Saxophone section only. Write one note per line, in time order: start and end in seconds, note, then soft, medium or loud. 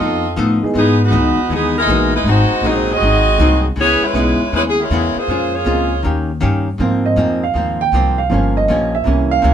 0.00 0.38 C4 medium
0.00 0.39 F4 medium
0.00 0.38 A4 medium
0.00 0.38 D#5 medium
0.78 1.00 E3 medium
0.78 1.00 B3 medium
0.78 1.00 D#4 medium
0.78 1.00 G#4 medium
1.04 1.53 E3 medium
1.04 1.52 B3 medium
1.04 1.53 D#4 medium
1.04 1.52 F#4 medium
1.54 1.76 E3 medium
1.54 1.76 B3 medium
1.54 1.76 D#4 medium
1.54 1.76 G#4 loud
1.78 2.12 G#3 medium
1.78 2.12 D#4 medium
1.78 2.12 E4 medium
1.78 2.12 A#4 loud
2.15 2.26 G#3 medium
2.15 2.26 D#4 medium
2.15 2.26 E4 medium
2.15 2.26 B4 loud
2.30 2.66 G#3 loud
2.30 2.66 D#4 loud
2.30 2.65 F#4 medium
2.30 2.66 C5 loud
2.67 2.91 F#3 medium
2.67 2.91 C4 medium
2.67 2.91 D#4 medium
2.67 2.91 G#4 medium
2.92 3.66 C4 medium
2.92 3.66 F#4 medium
2.92 3.66 G#4 medium
2.92 3.66 D#5 loud
3.81 4.02 B3 loud
3.81 4.02 E4 medium
3.81 4.02 G#4 loud
3.81 4.02 C#5 loud
4.04 4.54 G#3 medium
4.04 4.53 C#4 medium
4.04 4.53 E4 medium
4.04 4.54 B4 loud
4.56 4.63 G#3 medium
4.56 4.62 C#4 medium
4.56 4.62 E4 medium
4.56 4.63 B4 loud
4.69 4.78 G#4 medium
4.81 5.17 G#3 medium
4.81 5.17 C#4 medium
4.81 5.17 E4 medium
4.81 5.17 A#4 medium
5.18 5.54 A#3 medium
5.18 5.54 F4 medium
5.18 5.54 G#4 medium
5.18 5.55 C5 loud
5.55 6.04 A#3 medium
5.55 6.05 F4 medium
5.55 6.05 G#4 medium
5.55 6.05 C#5 medium